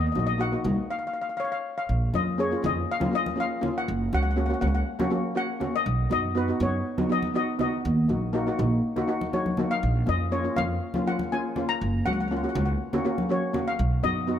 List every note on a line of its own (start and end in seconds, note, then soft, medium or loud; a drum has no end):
0.07 0.11 D#5 medium
0.12 0.54 A#1 medium
0.12 0.31 A#3 medium
0.12 0.31 D#4 medium
0.12 0.18 D#5 medium
0.12 high conga medium
0.16 0.31 F#4 medium
0.16 0.25 D#5 medium
0.27 0.34 D#5 medium
0.38 0.47 A#3 medium
0.38 0.47 D#4 medium
0.38 0.48 F#4 loud
0.38 0.92 F#5 loud
0.52 0.60 A#3 medium
0.52 0.60 D#4 medium
0.52 0.60 F#4 medium
0.64 0.75 C2 loud
0.64 0.87 A#3 medium
0.64 0.87 D#4 medium
0.64 0.88 F#4 medium
0.64 low conga medium
0.91 0.98 F5 medium
0.99 1.05 F5 medium
1.07 1.12 F5 medium
1.13 1.20 F5 medium
1.22 1.28 F5 medium
1.29 1.35 F5 medium
1.37 1.79 C#5 medium
1.37 1.43 F5 medium
1.45 1.51 F5 medium
1.52 1.58 F5 medium
1.78 2.12 F5 medium
1.89 2.08 A#1 loud
2.13 2.29 A#3 medium
2.13 2.29 C#4 medium
2.13 2.30 F4 medium
2.13 2.40 D#5 medium
2.13 high conga medium
2.38 2.46 A#3 medium
2.38 2.46 C#4 medium
2.38 2.47 G#4 medium
2.38 2.65 C#5 medium
2.51 2.59 A#3 medium
2.51 2.59 C#4 medium
2.51 2.59 F4 medium
2.62 2.83 F2 loud
2.62 2.85 A#3 medium
2.62 2.86 C#4 medium
2.62 2.86 F4 medium
2.62 2.90 D#5 medium
2.62 low conga medium
2.91 3.13 F5 loud
3.00 3.08 A#3 medium
3.00 3.08 C#4 medium
3.00 3.08 F4 medium
3.00 high conga medium
3.00 low conga loud
3.11 3.28 A#3 medium
3.11 3.28 C#4 medium
3.11 3.28 F4 medium
3.11 3.40 D#5 loud
3.26 high conga medium
3.36 3.52 A#3 medium
3.36 3.52 C#4 medium
3.36 3.53 F4 medium
3.40 3.78 F5 loud
3.61 3.87 A#3 medium
3.61 3.87 C#4 medium
3.61 3.87 F4 medium
3.61 low conga medium
3.78 4.13 F#5 loud
3.88 4.07 F#1 loud
4.13 4.51 C#2 medium
4.13 4.28 A#3 medium
4.13 4.28 C#4 medium
4.13 4.28 F#4 medium
4.13 4.21 F#5 loud
4.13 high conga medium
4.23 4.28 F#5 medium
4.31 4.36 F#5 medium
4.36 4.44 A#3 medium
4.36 4.44 C#4 medium
4.36 4.45 F#4 medium
4.36 4.44 F#5 medium
4.46 4.57 A#3 medium
4.46 4.57 C#4 medium
4.46 4.51 F#5 medium
4.50 4.57 F#4 medium
4.50 4.59 F#5 medium
4.61 4.81 C#2 loud
4.61 4.84 A#3 medium
4.61 4.84 C#4 medium
4.61 4.84 F#4 medium
4.61 4.66 F#5 medium
4.61 low conga medium
4.67 4.73 F#5 medium
4.75 4.81 F#5 medium
4.99 5.06 A#3 loud
4.99 5.07 C#4 loud
4.99 5.07 F#4 loud
4.99 high conga medium
4.99 low conga medium
5.10 5.26 A#3 medium
5.10 5.26 C#4 medium
5.10 5.27 F#4 loud
5.35 5.51 A#3 medium
5.35 5.51 C#4 medium
5.35 5.51 F#4 medium
5.35 5.75 F#5 loud
5.60 5.85 A#3 medium
5.60 5.85 C#4 medium
5.60 5.86 F#4 loud
5.60 low conga medium
5.76 6.09 D#5 loud
5.86 6.05 B1 loud
6.10 6.49 F#2 loud
6.10 6.25 B3 medium
6.10 6.26 D#4 medium
6.10 6.26 F#4 medium
6.10 6.37 D#5 loud
6.10 high conga medium
6.35 6.43 B3 medium
6.35 6.43 D#4 medium
6.35 6.43 F#4 medium
6.35 6.62 B4 medium
6.48 6.55 B3 medium
6.48 6.56 D#4 medium
6.48 6.56 F#4 medium
6.60 6.79 F#2 loud
6.60 6.82 B3 medium
6.60 6.83 D#4 medium
6.60 6.83 F#4 medium
6.60 7.12 C#5 medium
6.60 low conga medium
6.98 7.05 B3 medium
6.98 7.05 D#4 medium
6.98 7.05 F#4 medium
6.98 high conga medium
6.98 low conga medium
7.09 7.25 B3 medium
7.09 7.25 D#4 medium
7.09 7.25 F#4 medium
7.09 7.35 D#5 loud
7.23 high conga medium
7.34 7.50 B3 medium
7.34 7.50 D#4 medium
7.34 7.50 F#4 loud
7.34 7.60 D#5 loud
7.59 7.84 B3 medium
7.59 7.84 D#4 medium
7.59 7.85 F#4 medium
7.59 8.55 D#5 medium
7.59 low conga medium
7.85 8.04 D#2 loud
8.08 8.47 A#1 medium
8.08 8.24 A#3 medium
8.08 8.24 D#4 medium
8.08 8.25 F#4 medium
8.08 high conga medium
8.33 8.41 A#3 loud
8.33 8.42 D#4 loud
8.33 8.42 F#4 medium
8.47 8.54 A#3 medium
8.47 8.54 D#4 medium
8.47 8.54 F#4 loud
8.58 8.78 A#1 loud
8.58 8.81 A#3 medium
8.58 8.81 D#4 medium
8.58 8.81 F#4 medium
8.58 low conga medium
8.96 9.03 A#3 loud
8.96 9.04 D#4 medium
8.96 9.04 F#4 loud
8.96 low conga medium
9.07 9.23 A#3 medium
9.07 9.23 D#4 medium
9.07 9.24 F#4 loud
9.21 high conga medium
9.33 9.48 A#3 medium
9.33 9.48 D#4 medium
9.33 9.49 F#4 medium
9.33 9.68 C#5 medium
9.33 high conga medium
9.46 high conga medium
9.57 9.83 A#3 medium
9.57 9.83 D#4 medium
9.57 9.83 F#4 medium
9.57 low conga medium
9.71 10.05 F5 medium
9.83 10.02 A#1 loud
10.06 10.46 F2 medium
10.06 10.22 A#3 medium
10.06 10.23 C#4 medium
10.06 10.23 F4 medium
10.06 10.31 D#5 loud
10.06 high conga medium
10.31 10.40 A#3 medium
10.31 10.40 C#4 medium
10.31 10.40 F4 medium
10.31 10.55 C#5 medium
10.44 10.52 A#3 medium
10.44 10.52 C#4 medium
10.44 10.52 F4 medium
10.56 10.77 F2 loud
10.56 10.79 A#3 medium
10.56 10.79 C#4 medium
10.56 10.80 F4 medium
10.56 11.08 F5 loud
10.56 low conga medium
10.94 11.02 A#3 medium
10.94 11.02 C#4 medium
10.94 11.02 F4 loud
10.94 high conga medium
10.94 low conga medium
11.06 11.22 A#3 medium
11.06 11.22 C#4 medium
11.06 11.22 F4 medium
11.06 11.33 F#5 loud
11.19 high conga medium
11.32 11.47 A#3 medium
11.32 11.47 C#4 medium
11.32 11.48 F4 medium
11.32 11.71 G#5 medium
11.56 11.81 A#3 medium
11.56 11.81 C#4 medium
11.56 11.82 F4 medium
11.56 low conga medium
11.69 12.07 A#5 loud
11.81 12.00 F#1 loud
12.06 12.44 C#2 medium
12.06 12.21 A#3 medium
12.06 12.22 C#4 medium
12.06 12.22 F#4 medium
12.06 12.12 F#5 loud
12.06 high conga medium
12.13 12.19 F#5 medium
12.20 12.27 F#5 medium
12.28 12.39 A#3 medium
12.28 12.39 C#4 medium
12.28 12.35 F#5 medium
12.32 12.39 F4 medium
12.37 12.43 F#5 medium
12.43 12.51 A#3 medium
12.43 12.51 C#4 medium
12.43 12.51 F#4 medium
12.43 12.48 F#5 medium
12.49 12.56 F#5 medium
12.55 12.75 C#2 loud
12.55 12.78 A#3 medium
12.55 12.78 C#4 medium
12.55 12.78 F#4 medium
12.55 12.64 F#5 medium
12.55 low conga medium
12.65 12.73 F#5 medium
12.93 13.00 A#3 medium
12.93 13.01 C#4 medium
12.93 13.01 F#4 loud
12.93 low conga medium
13.05 13.20 A#3 loud
13.05 13.20 C#4 medium
13.05 13.21 F#4 loud
13.18 high conga medium
13.29 13.45 A#3 medium
13.29 13.45 C#4 medium
13.29 13.46 F#4 medium
13.29 13.70 C#5 medium
13.53 13.79 A#3 medium
13.53 13.79 C#4 medium
13.53 13.80 F#4 loud
13.53 low conga medium
13.68 14.06 F5 loud
13.79 13.99 B1 loud
14.03 14.39 F#2 medium
14.03 14.19 B3 medium
14.03 14.19 D#4 medium
14.03 14.20 F#4 medium
14.03 14.39 D#5 loud
14.03 high conga medium
14.27 14.36 B3 medium
14.27 14.36 D#4 medium
14.27 14.37 F#4 medium